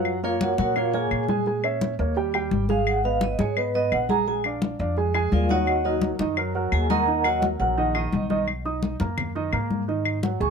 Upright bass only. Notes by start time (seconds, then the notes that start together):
Already playing: F#2
0.59 A#2
1.11 A#2
1.99 D#2
2.51 G#1
3.39 G#2
3.92 A#1
4.80 F2
5.32 D#2
6.19 F#2
6.72 D#2
7.60 A#1
8.13 B1
9.00 F#2
9.53 G#2
10.40 C#2